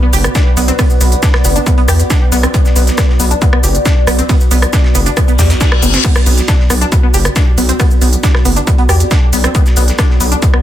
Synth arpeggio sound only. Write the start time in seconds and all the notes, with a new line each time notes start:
0.02 B3
0.13 G4
0.35 D4
0.57 B3
0.68 C4
0.79 B3
1.01 B3
1.23 D4
1.45 B3
1.56 D4
1.66 B3
1.78 B3
1.88 G4
2.10 D4
2.32 B3
2.43 C4
2.54 B3
2.76 B3
2.98 D4
3.20 B3
3.31 D4
3.42 B3
3.53 B3
3.64 G4
3.86 D4
4.07 B3
4.19 C4
4.29 B3
4.51 B3
4.73 D4
4.95 B3
5.06 D4
5.17 B3
5.28 B3
5.39 G4
5.61 D4
5.83 B3
5.94 C4
6.04 B3
6.26 B3
6.48 D4
6.70 B3
6.81 D4
6.92 B3
7.03 B3
7.14 G4
7.36 D4
7.58 B3
7.69 C4
7.80 B3
8.02 B3
8.23 D4
8.45 B3
8.56 D4
8.67 B3
8.78 B3
8.89 G4
9.11 D4
9.33 B3
9.44 C4
9.55 B3
9.77 B3
9.99 D4
10.20 B3
10.32 D4
10.42 B3
10.54 B3